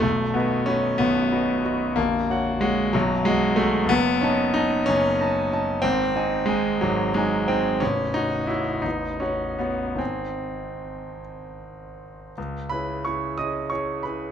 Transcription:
\new Staff \with { instrumentName = "Grand piano" } { \time 6/8 \key b \mixolydian \tempo 4. = 61 << { <b,,, b,,>8 <fis' b' dis''>8 <fis' b' dis''>8 <b,,, b,,>8 <fis' b' dis''>8 <fis' b' dis''>8 | <ais,,, ais,,>8 <fis' cis'' fis''>8 <fis' cis'' fis''>8 <b,,, b,,>8 <fis' dis'' fis''>8 <fis' dis'' fis''>8 | \key cis \minor <fis,, fis,>8 <dis' dis'' a''>8 <dis'' a''>8 <fis,, fis,>8 <dis' dis'' a''>8 <dis' dis'' a''>8 | <gis,, gis,>8 <dis' dis'' gis''>8 <dis' dis'' gis''>8 <gis,, gis,>8 <dis' dis'' gis''>8 <dis' dis'' gis''>8 |
<a,,, a,,>8 <fis' cis'' fis''>8 <fis' cis'' fis''>8 <a,,, a,,>8 <fis' cis'' fis''>8 <fis' cis'' fis''>8 | <gis,, dis' dis'' gis''>2. | cis,8 <cis' e' gis' b'>8 <cis' e' gis' cis''>8 <cis' e' gis' dis''>8 <cis' e' gis' cis''>8 <cis' e' gis' b'>8 | } \\ { a8 b8 cis'8 b4. | ais4 gis8 fis8 gis8 a8 | b8 cis'8 dis'8 cis'4. | bis4 gis8 fis8 gis8 bis8 |
cis'8 dis'8 e'8 dis'8 cis'8 b8 | bis4. r4. | r8 b''8 cis'''8 dis'''8 cis'''8 b''8 | } >> }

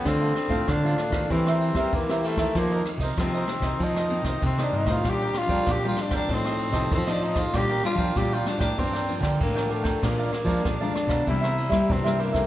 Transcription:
<<
  \new Staff \with { instrumentName = "Cavaquinho" } { \time 4/4 \key bes \major \tempo 4 = 96 <d' a' c'' f''>16 <a' c'' f''>16 r16 <a' c'' f''>16 <d' a' c'' f''>16 <a' c'' f''>16 r16 <a' c'' f''>16 <e' bes' c'' e''>16 <bes' c'' e''>8 <bes' c'' e''>8 <bes' c'' e''>16 <e' bes' c'' e''>16 <bes' c'' e''>16 | <f' bes' c'' ees''>16 <bes' c'' ees''>16 r16 <bes' c'' ees''>16 <f' bes' c'' ees''>16 <bes' c'' ees''>16 r16 <bes' c'' ees''>16 <f' bes' c'' ees''>16 <bes' c'' ees''>8 <bes' c'' ees''>8 <bes' c'' ees''>16 <f' bes' c'' ees''>16 <bes' c'' ees''>16 | <d' bes' d'' g''>16 <bes' d'' g''>16 r16 <bes' d'' g''>16 <d' bes' d'' g''>16 <bes' d'' g''>16 r16 <bes' d'' g''>16 <f' a' c'' ees''>16 <a' c'' ees''>8 <a' c'' ees''>8 <a' c'' ees''>16 <f' a' c'' ees''>16 <a' c'' ees''>16 | <d' bes' d'' g''>16 <bes' d'' g''>16 r16 <bes' d'' g''>16 <d' bes' d'' g''>16 <bes' d'' g''>16 r16 <bes' d'' g''>16 <f' bes' d'' g''>16 <bes' d'' g''>8 <bes' d'' g''>8 <bes' d'' g''>16 <f' bes' d'' g''>16 <bes' d'' g''>16 |
<aes' bes' d'' f''>16 <bes' d'' f''>16 r16 <bes' d'' f''>16 <aes' bes' d'' f''>16 <bes' d'' f''>16 r16 <bes' d'' f''>16 <e' bes' c'' e''>16 <bes' c'' e''>8 <bes' c'' e''>8 <bes' c'' e''>16 <e' bes' c'' e''>16 <bes' c'' e''>16 | }
  \new Staff \with { instrumentName = "Tenor saxophone" } { \time 4/4 \key bes \major c'4 d'4 c'4 bes8 a8 | bes8 r8 c'4 ees'4 c'16 d'16 ees'16 f'16 | g'8 f'8 g'16 f'16 d'16 d'16 c'4 c'16 d'16 ees'16 f'16 | g'8 f'8 g'16 f'16 d'16 d'16 c'8 r8 bes8 a8 |
bes4 d'4 e'4 c'8 bes8 | }
  \new Staff \with { instrumentName = "Nylon-string guitar" } { \time 4/4 \key bes \major << { <a c' f'>8 r16 <a c' f'>8 <a c' f'>8. <bes c' g'>8. <bes c' g'>8 <bes c' g'>8 <ees bes c'>16~ | <ees bes c'>8. r16 <ees bes c'>16 r16 <ees bes c'>8. r16 <ees bes c'>8. <ees bes c'>8. | <g c' d'>8. <g c' d'>8 <g c' d'>8. <f c' ees'>8. <f c' ees'>8 <f c' ees'>8. | <g d' f'>16 r16 <g d' f'>8 <g d' f'>16 r16 <g d' f'>8 <f bes d'>8 <f bes d'>8 r16 <f d'>8. |
<f aes d'>8 r16 <f aes d'>8 <f aes d'>8. <g bes e'>8 r16 <g bes e'>8 <g bes e'>8 <ees a c'>16 | } \\ { d4 a,4 e4 e4 | f,4 c4 f,4 c4 | bes,4 f4 a,4 a,4 | bes,4 f4 g,4 d4 |
bes,4 f,4 c4 g,4 | } >> }
  \new Staff \with { instrumentName = "Nylon-string guitar" } { \clef bass \time 4/4 \key bes \major d8 r16 a,16 d8 r16 ees16 e8. g16 e4 | f8 r16 c16 f8 r16 c16 f8. c16 c8 g,16 a,16 | bes,8 r16 f16 bes,8 r16 bes,16 a,8. c16 f4 | bes,8 r16 f16 bes,8 r16 a,16 g,8. d16 a,4 |
bes,8 r16 f16 bes,8 r16 ces16 c8. g16 c4 | }
  \new DrumStaff \with { instrumentName = "Drums" } \drummode { \time 4/4 <bd cymr ss>8 <cymr ss>16 <bd cymr>16 <bd cymr ss>8 <cymr ss>16 <bd cymr ss>16 <bd cymr>16 ss16 cymr16 <bd cymr ss>16 <bd cymr>16 ss16 cymr16 <bd cymr ss>16 | <bd cymr ss>8 <cymr ss>16 <bd cymr>16 <bd cymr ss>8 <cymr ss>16 <bd cymr ss>16 <bd cymr>16 ss16 cymr16 <bd cymr ss>16 <bd cymr>16 ss16 cymr16 <bd cymr ss>16 | <bd cymr ss>8 <cymr ss>16 <bd cymr>16 <bd cymr ss>8 <cymr ss>16 <bd cymr ss>16 <bd cymr>16 ss16 cymr16 <bd cymr ss>16 <bd cymr>16 ss16 cymr16 <bd cymr ss>16 | <bd cymr ss>8 <cymr ss>16 <bd cymr>16 <bd cymr ss>8 <cymr ss>16 <bd cymr ss>16 <bd cymr>16 ss16 cymr16 <bd cymr ss>16 <bd cymr>16 ss16 cymr16 <bd cymr ss>16 |
<bd cymr ss>8 <cymr ss>16 <bd cymr>16 <bd cymr ss>8 <cymr ss>16 <bd cymr ss>16 <bd cymr>16 ss16 cymr16 <bd cymr ss>16 <bd cymr>16 ss16 cymr16 <bd cymr ss>16 | }
>>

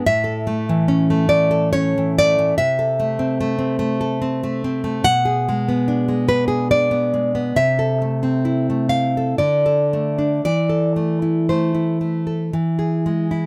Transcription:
\new Staff \with { instrumentName = "Nylon-string guitar" } { \time 3/4 \key a \major \tempo 4 = 71 << { e''4. d''8 cis''8 d''8 | \key a \minor e''2. | fis''4. b'8 d''4 | e''4. f''8 d''4 |
d''4 c''4 r4 | } \\ { a,16 a'16 a16 e16 cis'16 a16 cis'16 a'16 cis'16 e16 a16 e16 | c16 a'16 a16 c'16 a16 c'16 a16 a'16 c'16 a16 c'16 a16 | b,16 gis'16 gis16 b16 d'16 gis16 d'16 gis'16 d'16 b16 gis16 b16 | c16 a'16 a16 c'16 e'16 a16 e'16 a'16 d16 a'16 a16 d'16 |
e16 a'16 a16 e'16 a16 e'16 a16 a'16 e16 gis'16 gis16 e'16 | } >> }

